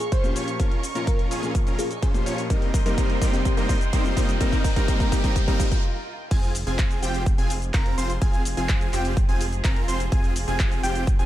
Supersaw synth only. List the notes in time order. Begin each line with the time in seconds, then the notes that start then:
0.12 C#4 F4 C5
0.36 C#4 F4 C#5
0.60 C#4 F4 A#4
0.95 C#4 F4 A#4
1.31 C#4 F4 G#4
1.67 C#4 F4 A#4
2.03 C#4 F4 C5
2.26 C#4 F4 C#5
2.50 G3 A#3 C4 D#4 A#4
2.86 G3 A#3 C4 D#4 A#4
3.22 G3 A#3 C4 D#4 G4
3.57 G3 A#3 C4 D#4 A#4
3.93 G3 A#3 C4 D#4 C5
4.17 G3 A#3 C4 D#4 D#5
4.41 G3 A#3 C4 D#4 A#4
4.76 G3 A#3 C4 D#4 A#4
5.12 G3 A#3 C4 D#4 G4
5.48 G3 A#3 C4 D#4 A#4
6.31 C4 F4 G#4
6.67 C4 F4 G#4
7.03 C4 F4 G4
7.38 C4 F4 G#4
7.74 C4 F4 A#4
7.98 C4 F4 C5
8.22 C4 F4 G#4
8.57 C4 F4 G#4
8.93 C4 F4 G4
9.29 C4 F4 G#4
9.64 C4 F4 A#4
9.88 C4 F4 C5
10.12 C4 F4 G#4
10.48 C4 F4 G#4
10.83 C4 F4 G4
11.19 C4 F4 G#4